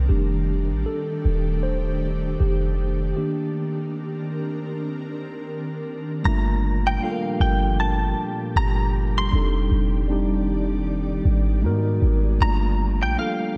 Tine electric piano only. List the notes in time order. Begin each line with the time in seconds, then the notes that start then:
Already playing: D#3 A#3 D4
0.09 D#3 G3 A3 D4 G4
0.86 A4
1.63 C5
2.40 G4
3.17 D#3 A#3 D4 G4
6.23 G3 A3 D4 F4
6.28 A3 A#3
7.00 G3 A#3 D4 F4
7.04 A4
7.11 A#4
9.31 G3 C4 D4 D#4
9.35 A4
10.08 G3 C4 D4 D#4
10.12 G4
11.62 G#3 A#3 D#4 F#4
11.66 B3 A#4
12.39 G3 A#3 D4 F4
12.43 A3
13.16 G3 A#3 D4 F4
13.20 A4